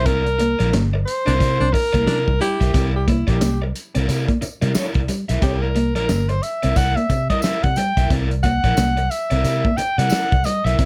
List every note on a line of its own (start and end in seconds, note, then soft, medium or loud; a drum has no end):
0.05 0.54 C2 loud
0.05 0.21 C4 medium
0.05 0.22 E4 medium
0.05 0.81 A#4 loud
0.05 0.22 A#4 medium
0.05 0.22 D5 medium
0.05 kick loud
0.05 closed hi-hat medium
0.26 muted clean electric guitar stroke soft
0.26 closed hi-hat soft
0.38 0.55 A#3 medium
0.38 muted overdriven electric guitar stroke soft
0.38 closed hi-hat medium
0.59 0.72 A#1 medium
0.59 0.69 E4 soft
0.59 0.68 A#4 medium
0.59 0.68 D5 medium
0.59 snare soft
0.59 closed hi-hat soft
0.73 1.03 G1 medium
0.73 0.88 A#3 medium
0.73 muted overdriven electric guitar stroke soft
0.73 snare loud
0.73 closed hi-hat medium
0.94 muted overdriven electric guitar stroke soft
0.94 muted clean electric guitar stroke soft
1.06 1.74 C5 loud
1.06 closed hi-hat medium
1.26 1.39 C2 medium
1.26 1.37 C4 medium
1.26 1.34 D4 medium
1.26 1.38 E4 medium
1.26 1.38 A#4 medium
1.26 1.37 D5 medium
1.26 closed hi-hat medium
1.39 1.58 C3 loud
1.39 1.56 E4 medium
1.39 1.56 A#4 medium
1.39 1.57 D5 loud
1.39 kick medium
1.39 closed hi-hat medium
1.60 1.72 C2 medium
1.60 1.71 C4 medium
1.60 1.69 D4 medium
1.73 2.40 A#4 loud
1.73 muted overdriven electric guitar stroke soft
1.73 muted clean electric guitar stroke soft
1.73 kick medium
1.73 open hi-hat medium
1.93 2.06 C2 medium
1.93 2.04 A#3 medium
1.93 2.03 E4 medium
1.93 2.02 A#4 medium
1.93 2.02 D5 medium
1.93 kick medium
1.93 closed hi-hat medium
2.06 2.25 C3 loud
2.06 2.20 D4 medium
2.06 2.23 E4 medium
2.06 2.23 A#4 medium
2.06 2.24 D5 medium
2.06 snare loud
2.06 closed hi-hat medium
2.28 2.40 C2 medium
2.28 kick loud
2.40 2.56 G3 medium
2.40 2.62 E4 loud
2.40 2.91 G4 loud
2.40 muted overdriven electric guitar stroke soft
2.40 closed hi-hat medium
2.61 2.73 B1 medium
2.61 2.70 E4 medium
2.61 2.70 A#4 medium
2.61 2.69 E5 medium
2.61 kick medium
2.61 snare soft
2.61 closed hi-hat medium
2.74 3.22 C2 loud
2.74 2.89 C4 medium
2.74 2.90 E4 medium
2.74 2.91 A#4 medium
2.74 2.91 D5 medium
2.74 kick loud
2.74 closed hi-hat medium
2.74 tambourine soft
2.94 3.08 G4 medium
2.94 muted clean electric guitar stroke medium
3.07 3.22 A#3 medium
3.07 3.30 E4 medium
3.07 muted overdriven electric guitar stroke soft
3.07 kick medium
3.07 closed hi-hat medium
3.27 3.42 A#1 medium
3.27 3.37 E4 medium
3.27 3.62 G4 medium
3.27 3.36 A#4 medium
3.27 3.36 D5 medium
3.27 kick medium
3.27 snare soft
3.27 closed hi-hat soft
3.41 3.72 C2 medium
3.41 3.56 A#3 medium
3.41 muted overdriven electric guitar stroke soft
3.41 snare loud
3.41 closed hi-hat loud
3.41 tambourine medium
3.61 muted clean electric guitar stroke soft
3.61 muted overdriven electric guitar stroke soft
3.76 closed hi-hat medium
3.76 tambourine medium
3.95 4.07 C2 medium
3.95 4.05 C4 medium
3.95 4.06 E4 medium
3.95 4.07 A#4 medium
3.95 4.06 D5 medium
3.95 closed hi-hat soft
4.08 4.26 C3 loud
4.08 4.24 E4 medium
4.08 4.25 A#4 medium
4.08 4.25 D5 medium
4.08 closed hi-hat medium
4.08 tambourine medium
4.28 4.38 A#3 medium
4.28 kick medium
4.28 closed hi-hat soft
4.41 muted overdriven electric guitar stroke soft
4.41 muted clean electric guitar stroke soft
4.41 muted fingered electric bass stroke soft
4.41 closed hi-hat medium
4.41 tambourine medium
4.61 4.74 C3 medium
4.61 4.72 G3 medium
4.61 4.71 E4 soft
4.61 4.71 A#4 medium
4.61 4.70 D5 medium
4.61 closed hi-hat medium
4.75 4.98 E4 medium
4.75 4.98 A#4 medium
4.75 4.99 D5 medium
4.75 muted fingered electric bass stroke soft
4.75 snare loud
4.75 closed hi-hat medium
4.75 tambourine loud
4.94 5.07 C2 loud
4.94 kick loud
4.94 closed hi-hat soft
5.08 5.24 G3 medium
5.08 muted overdriven electric guitar stroke soft
5.08 closed hi-hat medium
5.08 tambourine medium
5.29 5.41 B1 loud
5.29 5.38 E4 medium
5.29 5.38 A#4 medium
5.29 5.37 E5 medium
5.29 snare soft
5.29 closed hi-hat medium
5.42 5.96 C2 loud
5.42 5.58 C4 loud
5.42 5.65 E4 medium
5.42 5.63 G4 medium
5.42 5.65 A#4 medium
5.42 5.66 D5 medium
5.42 kick loud
5.42 closed hi-hat medium
5.61 5.95 A#4 medium
5.61 muted clean electric guitar stroke medium
5.75 5.91 A#3 medium
5.75 muted overdriven electric guitar stroke soft
5.75 closed hi-hat medium
5.95 6.11 A#1 medium
5.95 6.05 E4 medium
5.95 6.30 A#4 medium
5.95 6.05 A#4 medium
5.95 6.04 D5 medium
5.95 snare soft
5.95 closed hi-hat soft
6.09 6.39 G1 medium
6.09 6.24 A#3 medium
6.09 muted overdriven electric guitar stroke soft
6.09 snare loud
6.09 closed hi-hat medium
6.09 tambourine medium
6.29 6.44 C5 medium
6.29 muted overdriven electric guitar stroke soft
6.29 muted clean electric guitar stroke soft
6.29 closed hi-hat soft
6.43 6.78 E5 medium
6.43 closed hi-hat medium
6.43 tambourine soft
6.63 6.76 C2 medium
6.63 6.73 C4 medium
6.63 6.75 E4 medium
6.63 6.74 A#4 medium
6.63 6.74 D5 medium
6.63 closed hi-hat medium
6.76 6.95 C2 loud
6.76 6.93 E4 medium
6.76 6.93 A#4 medium
6.76 6.94 D5 loud
6.76 6.97 F#5 loud
6.76 kick medium
6.76 closed hi-hat medium
6.76 tambourine medium
6.96 7.06 A#3 medium
6.96 7.29 E5 medium
6.96 closed hi-hat soft
7.09 7.28 C3 loud
7.09 muted clean electric guitar stroke soft
7.09 muted overdriven electric guitar stroke soft
7.09 kick medium
7.09 closed hi-hat medium
7.09 tambourine soft
7.30 7.40 G3 medium
7.30 7.40 E4 medium
7.30 7.39 A#4 medium
7.30 7.39 D5 medium
7.30 7.44 D#5 loud
7.30 kick medium
7.30 closed hi-hat medium
7.42 7.60 E4 medium
7.42 7.61 A#4 medium
7.42 7.61 D5 loud
7.42 7.65 E5 medium
7.42 snare medium
7.42 closed hi-hat medium
7.42 tambourine medium
7.63 7.76 C3 medium
7.63 7.78 F#5 medium
7.63 kick loud
7.63 closed hi-hat soft
7.76 7.92 G3 medium
7.76 8.11 G5 loud
7.76 muted overdriven electric guitar stroke medium
7.76 closed hi-hat medium
7.76 tambourine medium
7.97 8.09 B1 loud
7.97 8.07 E4 medium
7.97 8.07 A#4 medium
7.97 8.06 E5 medium
7.97 kick medium
7.97 snare soft
7.97 closed hi-hat medium
8.10 8.58 C2 loud
8.10 8.25 C4 medium
8.10 8.27 E4 medium
8.10 8.28 A#4 medium
8.10 8.28 D5 medium
8.10 kick loud
8.10 closed hi-hat medium
8.30 muted clean electric guitar stroke soft
8.30 closed hi-hat soft
8.43 8.59 A#3 medium
8.43 9.12 F#5 loud
8.43 muted overdriven electric guitar stroke soft
8.43 kick medium
8.43 closed hi-hat medium
8.43 tambourine soft
8.64 8.76 A#1 medium
8.64 8.74 E4 soft
8.64 8.73 A#4 medium
8.64 8.73 D5 medium
8.64 kick medium
8.64 snare soft
8.64 closed hi-hat soft
8.77 9.08 C2 medium
8.77 8.93 A#3 medium
8.77 muted overdriven electric guitar stroke soft
8.77 snare loud
8.77 closed hi-hat loud
8.77 tambourine loud
8.97 muted overdriven electric guitar stroke soft
8.97 muted clean electric guitar stroke soft
8.97 closed hi-hat soft
9.10 9.78 E5 medium
9.10 closed hi-hat medium
9.10 tambourine medium
9.31 9.44 C2 medium
9.31 9.41 C4 medium
9.31 9.43 E4 medium
9.31 9.43 A#4 medium
9.31 9.42 D5 medium
9.31 closed hi-hat soft
9.44 9.63 C3 loud
9.44 9.61 E4 medium
9.44 9.61 A#4 medium
9.44 9.62 D5 loud
9.44 closed hi-hat medium
9.44 tambourine medium
9.65 9.75 A#3 medium
9.65 kick loud
9.77 9.99 G5 loud
9.77 muted fingered electric bass stroke soft
9.77 muted overdriven electric guitar stroke soft
9.77 muted clean electric guitar stroke soft
9.77 closed hi-hat medium
9.77 tambourine medium
9.98 10.10 C3 medium
9.98 10.09 G3 medium
9.98 10.08 E4 medium
9.98 10.07 A#4 medium
9.98 10.07 D5 medium
9.98 10.46 F#5 loud
9.98 closed hi-hat medium
10.10 10.28 E4 medium
10.10 10.28 A#4 medium
10.10 10.29 D5 loud
10.10 muted fingered electric bass stroke medium
10.10 snare loud
10.10 closed hi-hat medium
10.10 tambourine loud
10.32 10.44 C2 medium
10.32 kick loud
10.32 closed hi-hat soft
10.44 10.60 G3 medium
10.44 10.67 D#5 loud
10.44 muted overdriven electric guitar stroke soft
10.44 closed hi-hat loud
10.44 tambourine medium
10.65 10.77 B1 medium
10.65 10.75 E4 medium
10.65 10.74 A#4 medium
10.65 10.74 E5 medium
10.65 10.85 E5 loud
10.65 snare soft
10.65 closed hi-hat medium
10.79 10.85 C2 loud
10.79 10.85 C4 medium
10.79 10.85 E4 medium
10.79 10.85 A#4 medium
10.79 10.85 D5 medium
10.79 kick loud
10.79 closed hi-hat medium
10.79 tambourine soft